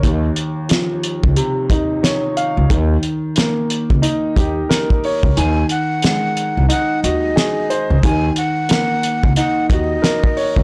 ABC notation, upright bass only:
X:1
M:4/4
L:1/16
Q:"Swing 16ths" 1/4=90
K:Ebdor
V:1 name="Upright bass" clef=bass
E,,2 z4 z D,, z2 E,,2 z3 D,, | E,,2 z4 z D,, z2 E,,2 z3 D,, | E,,2 z4 z C,, z2 E,,2 z3 D,, | E,,2 z4 z D,, z2 E,,2 z3 D,, |]